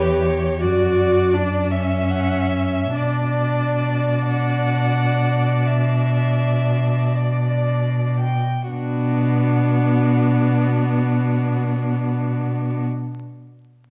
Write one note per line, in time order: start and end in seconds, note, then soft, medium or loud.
0.00 0.65 E2 medium
0.00 0.61 G4 medium
0.00 0.28 B4 soft
0.00 0.59 C#5 medium
0.27 0.63 C#5 soft
0.61 2.96 F#2 soft
0.61 1.35 F#4 medium
0.61 1.73 D5 medium
0.61 1.68 D5 soft
1.34 1.72 D4 medium
1.71 2.95 C#4 medium
1.71 2.13 E5 soft
1.71 2.93 E5 soft
2.11 2.52 F#5 soft
2.52 2.97 E5 soft
2.95 8.39 B2 soft
2.95 8.15 D4 medium
2.95 4.19 D5 soft
2.95 8.39 D5 soft
4.27 5.68 F#5 medium
5.67 7.17 E5 soft
7.15 8.19 D5 soft
8.20 8.70 G5 soft
8.70 12.84 B2 soft
8.70 12.83 B3 medium
8.70 12.84 D4 soft
8.70 12.83 F#4 soft